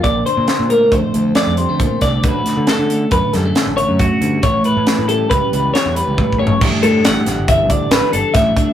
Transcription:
<<
  \new Staff \with { instrumentName = "Clean electric guitar" } { \time 5/4 \key a \mixolydian \tempo 4 = 137 d''8 c''4 bes'8 c''4 d''8 c''4 d''8 | b'4 a'4 b'8 a'4 cis''8 fis'4 | cis''8 b'4 a'8 b'4 cis''8 b'4 cis''8 | r8 a'8 fis''4 e''8 d''8 b'8 a'8 e''4 | }
  \new Staff \with { instrumentName = "Clean electric guitar" } { \clef bass \time 5/4 \key a \mixolydian << { r4 c'8 a4 a8 c'8 g16 a4~ a16 | <d a cis' fis'>4 cis'8 a4 g16 a16 cis'8 a4. | r4 cis'8 g4 g8 cis'8 g4. | <d g d' e'>8 d'8 g4. d'8 d'8 d'4 d'8 | } \\ { bes,8 d4. f,2 bes,8 d8 | d,8 d4. a,2 fis,8 g,8 | a,8 e4. e,2 a,8 e8 | a,4. d8 e,2 a,4 | } >> }
  \new Staff \with { instrumentName = "Fingered electric bass" } { \clef bass \time 5/4 \key a \mixolydian bes,,8 r16 bes,16 r16 bes,8. d,16 r16 d,8 r16 f,8 d,8 r16 c,8 | d,8 r16 d16 r16 d8. fis,16 r16 fis,8 r16 a,,8 fis,8 r16 d,8 | a,,8 r16 a,16 r16 a,8. cis,16 r16 cis,8 r16 e,8 cis,8 r16 a,,8 | a,,16 r16 a,8 a,,16 r16 a,,16 g,,8. d,8 a,,16 r16 g,,16 r16 a,,8 r8 | }
  \new DrumStaff \with { instrumentName = "Drums" } \drummode { \time 5/4 <hh bd>8 hh8 <hh sn>8 hh8 <hh bd>8 hh8 <hh sn>8 hh8 <hh bd>8 <hh bd sn>8 | <hh bd>8 <hh sn>8 <hh sn>8 hh8 <hh bd>8 <hh sn>8 <hh sn>8 hh8 <hh bd>8 hh8 | <hh bd>8 hh8 <hh sn>8 hh8 <hh bd>8 hh8 <hh sn>8 hh8 \tuplet 3/2 { <bd tommh>8 bd8 tomfh8 } | <cymc bd>8 hh8 <hh sn>8 <hh sn>8 <hh bd>8 <hh bd>8 <hh sn>8 hh8 <hh bd sn>8 <hh bd>8 | }
>>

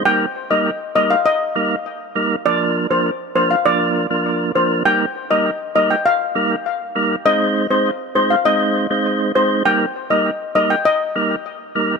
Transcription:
<<
  \new Staff \with { instrumentName = "Steel pan" } { \time 4/4 \key ees \major \tempo 4 = 100 g''8 r16 ees''16 r8 ees''16 f''16 ees''8. r4 r16 | d''8 r16 c''16 r8 c''16 f''16 d''8. r8. c''16 r16 | g''8 r16 ees''16 r8 ees''16 g''16 f''8. r4 r16 | ees''8 r16 c''16 r8 c''16 f''16 ees''8. r8. c''16 r16 |
g''8 r16 ees''16 r8 ees''16 g''16 ees''8. r4 r16 | }
  \new Staff \with { instrumentName = "Tonewheel organ" } { \time 4/4 \key ees \major <g bes ees' bes'>16 r8 <g bes ees' bes'>16 r8 <g bes ees' bes'>16 r8. <g bes ees' bes'>16 r8. <g bes ees' bes'>16 r16 | <f bes d' bes'>8. <f bes d' bes'>16 r8 <f bes d' bes'>16 r16 <f bes d' bes'>8. <f bes d' bes'>8. <f bes d' bes'>8 | <g bes ees' bes'>16 r8 <g bes ees' bes'>16 r8 <g bes ees' bes'>16 r8. <g bes ees' bes'>16 r8. <g bes ees' bes'>16 r16 | <aes c' ees' c''>8. <aes c' ees' c''>16 r8 <aes c' ees' c''>16 r16 <aes c' ees' c''>8. <aes c' ees' c''>8. <aes c' ees' c''>8 |
<g bes ees' bes'>16 r8 <g bes ees' bes'>16 r8 <g bes ees' bes'>16 r8. <g bes ees' bes'>16 r8. <g bes ees' bes'>16 r16 | }
>>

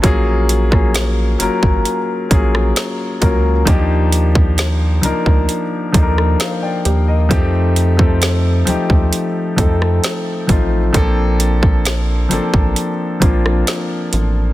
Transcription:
<<
  \new Staff \with { instrumentName = "Synth pluck" } { \time 4/4 \key bes \major \tempo 4 = 66 f''8 r2. bes'8~ | bes'8 r2. g'8~ | g'8 r2. a'8~ | a'8 r2. r8 | }
  \new Staff \with { instrumentName = "Grand piano" } { \time 4/4 \key bes \major << { r1 | r2. <c'' f''>16 <d'' g''>8 <bes' ees''>16~ | <bes' ees''>16 r2. r8. | r1 | } \\ { <ges bes des' f' aes'>8 r16 <ges bes des' f' aes'>8 r16 <ges bes des' f' bes'>8. r16 <ges bes des' f' aes'>8. r16 <ges bes des' f' bes'>16 r16 | <f bes d' ees' g'>4 r8 <f bes d' ees' bes'>8. r16 <f bes d' ees' a' bes'>4 r8 | <f a c' ees' g'>8 r16 <f a c' ees' a'>8 r16 <f a c' ees' g'>8. r16 <f a c' ees' a'>8. r16 <f a c' ees' f'>16 r16 | <f bes c' d' a'>4 r8 <f bes c' d' a'>8. r16 <f bes c' d' f'>4 r8 | } >> }
  \new Staff \with { instrumentName = "Analog synth bass" } { \clef bass \time 4/4 \key bes \major bes,,4. aes,,16 aes,,16 r8 bes,,8 r8 des,8 | ees,4. d,16 d,16 r8 ees,8 r8 ees,8 | f,4. ees,16 ees,16 r8 f,8 r8 a,,8 | bes,,4. a,,16 a,,16 r8 bes,,8 r8 a,,8 | }
  \new DrumStaff \with { instrumentName = "Drums" } \drummode { \time 4/4 <hh bd>8 hh16 <bd ss>16 <hh sn>8 hh16 bd16 hh8 <hh bd>16 ss16 <hh sn>8 <hh bd>8 | <hh bd>8 hh16 bd16 <hh sn>8 hh16 bd16 hh8 <hh bd>16 ss16 <hh sn>8 hh8 | <hh bd>8 hh16 bd16 <hh sn>8 hh16 bd16 hh8 <hh bd>16 ss16 <hh sn>8 <hh bd>8 | <hh bd>8 hh16 bd16 <hh sn>8 hh16 bd16 hh8 <hh bd>16 ss16 <hh sn>8 hh8 | }
>>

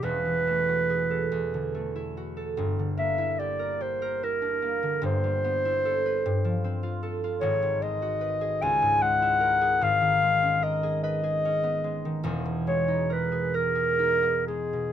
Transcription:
<<
  \new Staff \with { instrumentName = "Clarinet" } { \time 6/8 \key g \lydian \tempo 4. = 49 b'2~ b'8 r8 | r8 e''8 d''8 c''8 bes'4 | c''2~ c''8 r8 | \key gis \minor cis''8 dis''4 gis''8 fis''4 |
eis''4 dis''8 dis''4. | r8 cis''8 b'8 ais'4 gis'8 | }
  \new Staff \with { instrumentName = "Harp" } { \time 6/8 \key g \lydian <e,, e, cis' e'>16 e16 a16 fis'16 gis'16 a'16 e,16 d16 a16 e'16 fis'16 a'16 | <g,, g,>16 d16 bes16 e'16 g'16 bes'16 g'16 bes'16 e'16 d'16 bes16 d16 | <g,, g,>16 g16 b16 e'16 a'16 b'16 g,16 f16 c'16 f'16 a'16 f'16 | \key gis \minor <gis,, gis,>16 dis16 gis16 fis'16 b'16 gis'16 cis,16 gis,16 gis16 e'16 ais'16 gis'16 |
<gis,, gis,>16 dis16 gis16 cis'16 ais'16 gis'16 b'16 gis'16 cis'16 b16 gis16 dis16 | <e,, e,>16 b,16 gis16 dis'16 ais'16 gis'16 ais'16 gis'16 dis'16 b16 gis16 b,16 | }
>>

